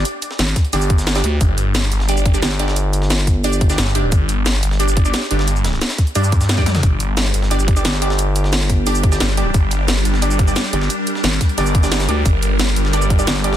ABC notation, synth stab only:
X:1
M:4/4
L:1/16
Q:1/4=177
K:Gm
V:1 name="Synth stab"
z8 [DGd]2 z3 [DGd] z2 | z8 [DGd]2 z [DGd]2 z [DGd] z | z8 [DGd]2 z [DGd]2 z [DGd] z | z8 [DGd]2 z [DGd]2 z [DGd] z |
z8 [DGd]2 z3 [DGd] z2 | z8 [DGd]2 z [DGd]2 z [DGd] z | z8 [DGd]2 z [DGd]2 z [DGd] z | z8 [DGd]2 z [DGd]2 z [DGd] z |
z8 [DGd]2 z [DGd]2 z [DGd] z | z8 [DGd]2 z [DGd]2 z [DGd] z |]